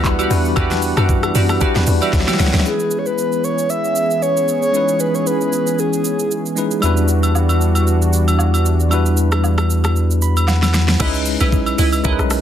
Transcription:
Already playing: D2 E3 G3 B3 D4 E4 F#4 B4 F#5
0.04 kick, clap, shaker
0.19 F#4 G4 D5, high agogo, shaker
0.30 E2 G3 D4 E4 F#4 B4, open hi-hat, shaker
0.45 shaker
0.56 E2 D4 E4 F#4 G4 B4 D5, kick, high agogo, shaker
0.71 snare, shaker
0.82 open hi-hat, shaker
0.97 F#2 F#4 G4 D5, cross-stick, high agogo, shaker
1.09 kick, shaker
1.23 cross-stick, high agogo, shaker
1.35 F#2 F#4 G4 D5, open hi-hat, shaker
1.49 cross-stick, high agogo, shaker
1.60 G3 D4 E4 F#4 G4 B4 D5, kick, shaker
1.75 E2, snare, shaker
1.87 E2, open hi-hat, shaker
2.01 F#4 G4 B4 D5 E5, high agogo, shaker
2.13 D2 C#5 F#5, kick, snare, shaker
2.20 snare
2.28 F#4 G4 D5 G5, snare, high agogo, shaker
2.33 snare
2.39 C#2 C#5 F#5, snare, open hi-hat, shaker
2.46 snare
2.53 D2 B4 E5, snare, shaker
2.60 snare
2.64 E3 G#3 B3 C#4 E4 G#4, shaker
2.68 B4
2.80 shaker
2.91 shaker
2.99 C#5
3.06 B4, shaker
3.18 shaker
3.32 shaker
3.44 C#5, shaker
3.58 shaker
3.70 E5, shaker
3.84 shaker
3.96 shaker
4.10 shaker
4.22 C#5, shaker
4.37 shaker
4.48 shaker
4.62 C#5, shaker
4.72 G#3 C#4 D#4 E4, shaker
4.77 B4
4.88 shaker
5.00 B4, shaker
5.15 C#5, shaker
5.27 B4, shaker
5.41 shaker
5.53 shaker
5.67 shaker
5.79 G#4, shaker
5.93 shaker
6.05 shaker
6.19 shaker
6.31 shaker
6.46 shaker
6.56 G#3 C#4 D#4 E4 B4, shaker
6.71 shaker
6.81 E2 E3 G3 D4 E4 F#4, high agogo, shaker
6.85 B4
6.97 shaker
7.08 shaker
7.23 high agogo, shaker
7.35 low woodblock, shaker
7.49 high agogo, shaker
7.61 shaker
7.75 high agogo, shaker
7.87 shaker
8.02 shaker
8.13 shaker
8.28 high agogo, shaker
8.39 low woodblock, shaker
8.54 high agogo, shaker
8.66 shaker
8.80 shaker
8.89 G3 D4 E4 F#4, high agogo, shaker
8.94 B4
9.06 shaker
9.17 shaker
9.32 cross-stick, high agogo, shaker
9.44 low woodblock, shaker
9.58 cross-stick, high agogo, shaker
9.70 shaker
9.84 cross-stick, high agogo, shaker
9.96 shaker
10.11 shaker
10.22 B5, shaker
10.37 high agogo, shaker
10.47 F#5, snare, low woodblock, shaker
10.62 snare, high agogo, shaker
10.74 snare, shaker
10.88 snare, shaker
10.99 C#2 G#3 C#4 D#4 E4 B4 D#5, kick, crash, high agogo, shaker
11.14 shaker
11.26 open hi-hat, shaker
11.40 B1 E4 B4 D#5, high agogo, shaker
11.52 kick, shaker
11.66 high agogo, shaker
11.78 C#2 E4 B4 D#5, open hi-hat, shaker
11.93 high agogo, shaker
12.04 C#2 G#3 C#4 D#4 E4 A#4 B4 D#5, kick, shaker
12.12 B4
12.19 B1, cross-stick, shaker
12.30 cross-stick, open hi-hat, shaker

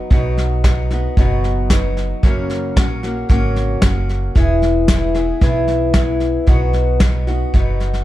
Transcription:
Already playing: F#3 B3 D#4 F#4
0.10 B1 B2 F#3 B3 D#4 F#4, kick, snare
0.37 snare
0.64 F#3 B3 D#4 F#4, kick, snare, hi-hat pedal
0.90 B3 D#4 F#4, snare
1.17 F#1 B2 F#3 B3 D#4 F#4, kick, snare
1.44 snare
1.70 F#3 B3 D#4 F#4, kick, snare, hi-hat pedal
1.97 snare
2.23 F#1 F#2 C#3 F#3 A#3 C#4 F#4, kick, snare
2.50 snare
2.77 A#1 F#3 A#3 C#4 F#4, kick, snare, hi-hat pedal
3.03 F#3 A#3 C#4 F#4, snare
3.29 G#1 F#2 C#3 F#3 A#3 C#4 F#4, kick, snare
3.56 snare
3.82 F#1 F#3 A#3 C#4 F#4, kick, snare, hi-hat pedal
4.09 snare
4.35 E1 E3 B3 E4 G#4, kick, snare
4.62 snare
4.88 E3 B3 E4 G#4, kick, snare, hi-hat pedal
5.15 B3 E4 G#4, snare
5.41 B1 E3 B3 E4 G#4, kick, snare
5.68 snare
5.94 E3 B3 E4 G#4, kick, snare, hi-hat pedal
6.20 snare
6.47 B1 B2 F#3 B3 D#4 F#4, kick, snare
6.73 snare
7.00 F#3 B3 D#4 F#4, kick, snare, hi-hat pedal
7.27 B3 D#4 F#4, snare
7.53 F#1 B2 F#3 B3 D#4 F#4, kick, snare
7.80 snare
7.94 snare

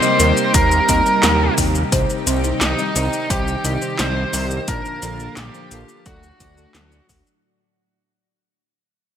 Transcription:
Already playing: C3 G3 A#3 D#4 G4 C5
0.02 G3 C4 D#4 D#5, shaker
0.20 D#2 G3 C4 D#4 A#4, closed hi-hat, shaker
0.37 shaker
0.54 D#2 G3 C4 D#4 A#4, kick, closed hi-hat, shaker
0.71 shaker
0.89 D#2 G3 C4 D#4 D#5, kick, closed hi-hat, shaker
1.06 G3 C4 D#4 A#4, shaker
1.23 D#2 G3 C4 A#4, snare, clap, closed hi-hat, shaker
1.58 D#2 C3 G3 C4 D#4 G4, kick, open hi-hat, shaker
1.75 shaker
1.92 C2 C3 D#3 G3 C4 D#4 C5, kick, closed hi-hat, shaker
2.10 shaker
2.27 C2 C3 G3 C4 D#4 C5, closed hi-hat, shaker
2.44 C3 G3 C4 D#4 C5, shaker
2.61 C2 D#4, snare, clap, closed hi-hat, shaker
2.79 C3 G3 C4 D#4 D#5, shaker
2.96 C2 C3 G3 C4 D#4 C5, closed hi-hat, shaker
3.13 shaker
3.30 C2 C3 G3 C4 D#4 G4 C5, kick, closed hi-hat, shaker
3.48 shaker
3.65 C2 C3 G3 C4 D#4 D#5, closed hi-hat, shaker
3.82 C3 G3 C4 D#4 C5, shaker
3.99 C2 C3 G3 C4 D#4 C5, snare, clap, closed hi-hat, shaker
4.33 C2 G3 C4 D#4 A#4, open hi-hat, shaker
4.51 shaker
4.68 A#1 A#2 D3 F3 A#3 D4 F4 A#4 A5, kick, closed hi-hat, shaker
4.85 shaker
5.02 A#1 A#2 F3 A#3 D4 A4, closed hi-hat, shaker
5.20 A#2 F3 A#3 D4 A4, shaker
5.37 A#1 G4, snare, clap, closed hi-hat, shaker
5.54 A#2 F3 A#3 D4 C5, shaker
5.71 A#1 F3 A#3 D4 A4, closed hi-hat, shaker
5.89 shaker
6.06 D2 A2 F#3 A3 D4 F#4 A4, kick, closed hi-hat, shaker
6.23 shaker
6.40 D2 F#3 A3 D4 D5, kick, closed hi-hat, shaker
6.57 F#3 A3 D4 A4, shaker
6.75 D2 F#3 A3 D4 A4, snare, clap, closed hi-hat, shaker
6.92 shaker
7.09 D2 F#3 A3 D4 F#4, kick, open hi-hat, shaker
7.27 shaker

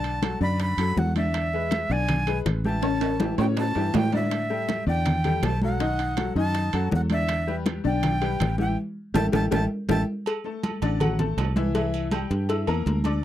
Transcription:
Already playing: B1 D3 D4 D5 A5
0.04 high bongo, high conga, high timbale
0.22 F#3 F#4 A4, high bongo, high conga, high timbale
0.41 F#2 D3 D4 D5 B5, high bongo, high conga
0.60 B5, high bongo, high conga, high timbale
0.77 F#2 F#3 F#4 A4, high bongo, high conga, high timbale
0.97 E2 F#5, high bongo, low bongo, high conga
1.16 D3 D4 D5 E5, high conga, high timbale
1.34 high bongo, high conga, high timbale
1.53 G#3 G#4 B4, high bongo, high conga
1.71 high bongo, high conga, high timbale
1.90 B1 D3 D4 D5 G#5, high bongo
2.08 high bongo, high conga, low conga, high timbale
2.27 G#3 G#4 B4, high bongo, high conga, high timbale
2.46 A1, high bongo, low bongo, high timbale
2.64 E3 E4 G4 A5, high conga
2.82 C#3 C#4 C#5, high bongo, high timbale
3.01 high bongo, high conga, high timbale
3.20 E3 E4 G4, high bongo, high conga, low timbale
3.38 A2 C#3 C#4 C#5 G5, high bongo, low timbale
3.57 A5, high bongo, high conga, low timbale
3.75 G2 E3 E4 G4, high bongo, high conga, low timbale
3.94 A2 G5, high bongo, low bongo, high conga, low timbale
4.12 D3 D4 D5 E5, high conga, low timbale
4.31 high bongo, high conga, high timbale
4.50 G3 G4 A4, high bongo, high conga
4.69 high bongo, high conga, high timbale
4.86 E2 D3 D4 D5 G5, high bongo
5.06 high bongo, high conga, low conga, high timbale
5.24 G3 G4 A4, high bongo, high conga, low conga, high timbale
5.42 B1 A5, high bongo, low bongo, high conga, high timbale, low timbale
5.62 F#3 F#4 A4 F#5, high conga
5.80 D#3 D#4 D#5, high bongo, high timbale
5.99 high bongo, high conga, high timbale
6.17 F#3 F#4 A4, high bongo, high conga, high timbale
6.35 F#2 D#3 D#4 D#5 A5, high bongo, high conga
6.54 high bongo, high conga, high timbale
6.73 F#2 F#3 F#4 A4, high bongo, high conga, high timbale
6.91 E2 F#5, high bongo, low bongo, high conga
7.10 D3 D4 D5 E5, high conga, high timbale
7.29 high bongo, high conga, high timbale
7.47 G3 G4 B4, high bongo, high conga
7.66 high bongo, high conga, high timbale
7.84 B1 D3 D4 D5 G5, high bongo
8.03 high bongo, high conga, low conga, high timbale
8.21 G3 G4 B4, high bongo, high conga, high timbale
8.40 A1, high bongo, low bongo, high conga, high timbale
8.58 E3 E4 G4 G5, high conga
9.14 A1 E4 G4 A4 A5, low bongo, high conga, high timbale
9.32 A1 E4 G4 A4 A5, low bongo, high conga, high timbale
9.51 A1 E4 G4 A4 A5, low bongo, high conga, high timbale
9.88 A1 E4 G4 A4 A5, low bongo, high conga, high timbale
10.26 cowbell, high conga, low agogo
10.44 A3 A4 A5, high conga
10.63 cowbell, high conga, low agogo
10.82 A1 D3 D4 D5, cowbell, low agogo
11.00 F#3 F#4 F#5, cowbell, high conga, low conga, low agogo
11.19 A3 A4 A5, cowbell, high conga, low conga
11.37 C2, cowbell, high conga, low timbale, low agogo
11.56 E3 E4 E5, cowbell, high conga
11.75 E3 E4 E5, cowbell, high conga, low agogo
11.93 high conga, low agogo
12.11 G3 G4 G5, cowbell, high conga, low agogo
12.30 G2, cowbell, high conga
12.49 E4 E5 E6, cowbell, high conga, low agogo
12.67 E2 A#3 A#4 A#5, high conga, low agogo
12.86 D2, cowbell, high conga
13.04 D4 D5 D6, cowbell, high conga, low agogo

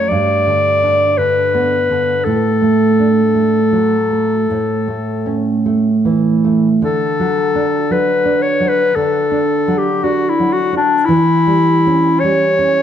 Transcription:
Already playing: F#3
0.08 G2 D5
0.47 D3
0.83 D4
1.18 D3 B4
1.54 B3
1.90 D3
2.25 A2 A4
2.62 A3
2.99 D4
3.35 A3
3.72 F#3
4.11 A3
4.50 A2
4.88 A3
5.26 C#4
5.66 A3
6.05 E3
6.44 A3
6.82 D3 A4
7.20 F#3
7.55 D4
7.90 F#3 B4
8.25 D4
8.42 C#5
8.60 F#3
8.68 B4
8.96 D3 A4
9.31 D4
9.68 F#3
9.78 G4
10.03 D4 F#4
10.30 E4
10.40 F#3
10.53 F#4
10.73 D4
10.77 D4
11.05 E3 E4
11.47 G3
11.87 C#4
12.20 G3 C#5
12.59 C#4

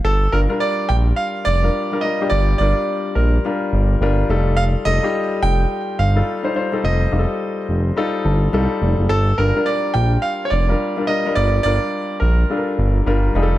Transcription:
0.05 G1 A4
0.32 G1 G3 D4 F4 A#4
0.49 G3 D4 F4 A#4
0.60 D5
0.89 A#1 G5
1.16 F5
1.45 F1 D5
1.63 G3 D4 F4 A#4
1.92 G3 D4 F4 A#4
2.01 G3 D4 F4 A#4 D#5
2.21 G3 D4 F4 G4
2.30 G1 D5
2.58 G1 G3 D4 F4 A#4 D5
3.15 A#1 A#4
3.45 G3 D4 F4 A#4
3.73 G1
4.01 G1 G3 D4 F4 A#4
4.29 F1 G3 D#4 F4 A4
4.57 F5
4.85 F1 G3 D#4 F4 A4 D#5
5.03 G3 D#4 F4 G4
5.43 F1 G5
5.99 G1 F5
6.15 G3 D#4 F4 A4
6.43 G3 D#4 F4 C5
6.55 G3 D#4 F4 C5
6.72 G3 D#4 F4 A4
6.84 F1 D#5
7.12 F1 G3 D#4 F4 G4
7.19 A4
7.69 F1
7.96 G3 D#4 F4 A4
8.25 G1 A5
8.53 C2 G3 D#4 F4 A4 F5
8.82 F1 D5
8.99 F#1
9.09 G1 A4
9.38 G1 G3 D4 F4 A#4
9.55 G3 D4 F4 A#4
9.66 D5
9.94 A#1 G5
10.22 F5
10.45 C#5
10.50 F1 D5
10.68 G3 D4 F4 A#4
10.97 G3 D4 F4 A#4
11.07 G3 D4 F4 A#4 D#5
11.26 G3 D4 F4 A#4
11.35 G1 D5
11.63 G1 G3 D4 F4 A#4 D5
12.20 A#1 A#4
12.50 G3 D4 F4 A4
12.57 A#4
12.79 G1
13.06 G1 G3 D4 F4 A#4
13.35 F1 G3 D#4 F4 G#4
13.43 A4

